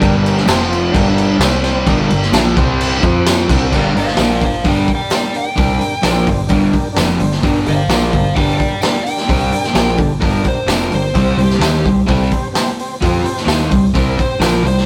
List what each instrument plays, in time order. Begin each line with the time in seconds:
0.00 picked electric bass G1, overdriven electric guitar G2 D3 G3, transistor combo organ D4 G4 A#4, kick, crash
0.22 transistor combo organ D4 G4 A#4, crash
0.38 snare
0.45 picked electric bass F1, overdriven electric guitar F2 C3 F3, transistor combo organ C4 F4 C5, snare, tambourine, crash
0.66 transistor combo organ C4 F4 C5
0.73 crash
0.91 picked electric bass G1, overdriven electric guitar G2 D3 G3, transistor combo organ D4 G4 A#4, kick
0.96 crash
1.13 transistor combo organ D4 G4 A#4
1.18 crash
1.39 picked electric bass C2, overdriven electric guitar C3 G3 C4, transistor combo organ C4 G4 C5, snare, tambourine, crash
1.62 transistor combo organ C4 G4 C5, snare, crash
1.85 picked electric bass G1, overdriven electric guitar G2 D3 G3, transistor combo organ D4 G4 A#4, kick, crash
2.06 transistor combo organ D4 G4 A#4
2.10 picked electric bass G1, overdriven electric guitar G2 D3, crash
2.22 snare
2.32 picked electric bass A#1, overdriven electric guitar A#2 F3 A#3, transistor combo organ D4 G4 A#4, snare, tambourine, crash
2.55 picked electric bass C2, overdriven electric guitar C3 G3 C4, transistor combo organ C4 G4 C5, kick, crash
2.81 crash
3.01 picked electric bass F2, overdriven electric guitar F3 C4 F4, transistor combo organ C4 F4 C5, kick, crash
3.27 snare, tambourine, crash
3.47 picked electric bass C2, overdriven electric guitar C3 G3 C4, transistor combo organ D4 G4 A#4, kick, snare, crash
3.71 picked electric bass G1, overdriven electric guitar G2 D3 G3, transistor combo organ D4 G4 A#4, kick, crash
3.94 picked electric bass G1, overdriven electric guitar G2 D3, transistor combo organ D4 G4 A#4, lead electric guitar C5, open hi-hat
3.99 lead electric guitar F5
4.08 snare
4.17 picked electric bass A#1, overdriven electric guitar A#2 F3, transistor combo organ D4 G4 A#4, lead electric guitar C5, snare, open hi-hat, tambourine
4.21 overdriven electric guitar A#3, lead electric guitar F5
4.38 picked electric bass G1, transistor combo organ D4 G4 A#4, kick, open hi-hat
4.43 overdriven electric guitar G2 D3, lead electric guitar C5 F5
4.61 picked electric bass G1, overdriven electric guitar G2, transistor combo organ D4 G4 A#4, kick, open hi-hat
4.65 overdriven electric guitar D3 G3, lead electric guitar D5 G5
4.84 transistor combo organ D4 G4 A#4, open hi-hat
4.88 kick
4.95 lead electric guitar D5 G5
5.10 transistor combo organ D4 G4 A#4, snare, open hi-hat, tambourine
5.15 lead electric guitar D5 G5
5.32 transistor combo organ D4 G4 A#4, open hi-hat
5.38 lead electric guitar G5
5.56 picked electric bass C2, overdriven electric guitar C3 G3 C4, transistor combo organ D4 G4 A#4, kick, open hi-hat
5.76 transistor combo organ D4 G4 A#4
5.80 muted overdriven electric guitar stroke, open hi-hat
6.02 picked electric bass A#1, overdriven electric guitar A#2 F3 A#3, transistor combo organ D4 G4 A#4, snare, open hi-hat, tambourine
6.25 picked electric bass G1, overdriven electric guitar G2 D3, transistor combo organ D4 G4 C5, kick, open hi-hat
6.47 picked electric bass G1, overdriven electric guitar G2 D3, transistor combo organ D4 G4 A#4, kick, open hi-hat
6.51 overdriven electric guitar G3
6.72 transistor combo organ D4 G4 A#4, muted overdriven electric guitar stroke, kick, open hi-hat
6.92 transistor combo organ D4 G4 A#4
6.97 picked electric bass F1, overdriven electric guitar F2 C3 F3, snare, open hi-hat, tambourine
7.17 picked electric bass G1, overdriven electric guitar G2 D3, transistor combo organ D4 G4 C5, open hi-hat
7.32 snare
7.42 picked electric bass G1, overdriven electric guitar G2 D3 G3, transistor combo organ D4 G4, kick, open hi-hat
7.47 transistor combo organ A#4
7.66 picked electric bass G1, overdriven electric guitar G2 D3, transistor combo organ D4 G4 A#4, lead electric guitar C5 F5, open hi-hat
7.88 picked electric bass A#1, overdriven electric guitar A#2 F3 A#3, transistor combo organ G4, lead electric guitar C5 F5, snare, open hi-hat, tambourine
7.92 transistor combo organ D4 A#4
8.12 picked electric bass G1, overdriven electric guitar G2 D3, transistor combo organ D4 G4, lead electric guitar C5 F5, kick, open hi-hat
8.16 transistor combo organ A#4
8.35 picked electric bass G1, overdriven electric guitar G2 D3 G3, transistor combo organ D4 G4 A#4, lead electric guitar D5 G5, kick, open hi-hat
8.58 transistor combo organ D4 G4 A#4, lead electric guitar D5 G5, kick, open hi-hat
8.80 transistor combo organ D4 G4 A#4, lead electric guitar D5 G5, snare, open hi-hat, tambourine
9.04 transistor combo organ D4 G4, lead electric guitar G5, open hi-hat
9.08 transistor combo organ A#4
9.18 snare
9.27 picked electric bass C2, overdriven electric guitar C3 G3 C4, transistor combo organ D4 G4 A#4, kick, open hi-hat
9.51 transistor combo organ D4 G4 A#4, muted overdriven electric guitar stroke, muted picked electric bass stroke, open hi-hat
9.64 snare
9.74 picked electric bass A#1, overdriven electric guitar A#2 F3 A#3, transistor combo organ D4 G4, snare, open hi-hat, tambourine
9.78 transistor combo organ A#4
9.95 picked electric bass G1, overdriven electric guitar G2 D3, transistor combo organ D4 G4 A4, kick, open hi-hat
10.20 picked electric bass G1, overdriven electric guitar G2 D3 G3, transistor combo organ D4 G4 A#4, lead electric guitar A#4, kick, open hi-hat
10.43 transistor combo organ D4 G4, muted overdriven electric guitar stroke, kick, open hi-hat
10.47 transistor combo organ A#4, lead electric guitar C5
10.66 picked electric bass F1, overdriven electric guitar F2 C3 F3, transistor combo organ D4 G4 A#4, snare, open hi-hat, tambourine
10.71 lead electric guitar A#4
10.91 picked electric bass G1, overdriven electric guitar G2 D3, transistor combo organ D4 G4 A#4, open hi-hat
10.95 lead electric guitar C5
11.13 picked electric bass C2, overdriven electric guitar C3 G3 C4, transistor combo organ C4 G4 C5, kick, open hi-hat
11.37 picked electric bass C2, overdriven electric guitar C3 G3, transistor combo organ C4 G4 C5, open hi-hat
11.43 lead electric guitar G4
11.51 snare
11.59 picked electric bass D#2, overdriven electric guitar D#3 A#3 D#4, snare, open hi-hat
11.63 transistor combo organ C4 G4 C5, tambourine
11.84 picked electric bass C2, overdriven electric guitar C3 G3, transistor combo organ C4 G4 C5, kick, open hi-hat
12.06 picked electric bass C2, overdriven electric guitar C3 G3 C4, transistor combo organ C4 G4, kick, open hi-hat
12.10 transistor combo organ A4
12.31 transistor combo organ C4 G4 C5, kick, open hi-hat
12.53 transistor combo organ C4 G4 C5, snare, open hi-hat, tambourine
12.80 transistor combo organ C4 G4 C5, open hi-hat
13.02 picked electric bass F2, overdriven electric guitar F3 C4 F4, transistor combo organ C4 G4 C5, kick, open hi-hat
13.23 transistor combo organ C4 G4 C5, muted picked electric bass stroke, muted overdriven electric guitar stroke, open hi-hat
13.37 snare
13.45 picked electric bass D#2, overdriven electric guitar D#3 A#3 D#4, transistor combo organ C4 G4 C5, snare, open hi-hat
13.49 tambourine
13.67 overdriven electric guitar C3, transistor combo organ C4 G4 C5
13.71 picked electric bass C2, overdriven electric guitar G3, kick, open hi-hat
13.94 picked electric bass C2, overdriven electric guitar C3 G3 C4, transistor combo organ C4 G4 C5, lead electric guitar A#4, kick, open hi-hat
14.18 transistor combo organ C4 G4 C5, lead electric guitar C5, muted overdriven electric guitar stroke, muted picked electric bass stroke, kick, open hi-hat
14.38 picked electric bass A#1, overdriven electric guitar A#2 F3 A#3, transistor combo organ C4 G4 C5, lead electric guitar A#4, snare, open hi-hat, tambourine
14.63 picked electric bass C2, overdriven electric guitar C3 G3, transistor combo organ C4 G4 C5, lead electric guitar C5, open hi-hat
14.78 snare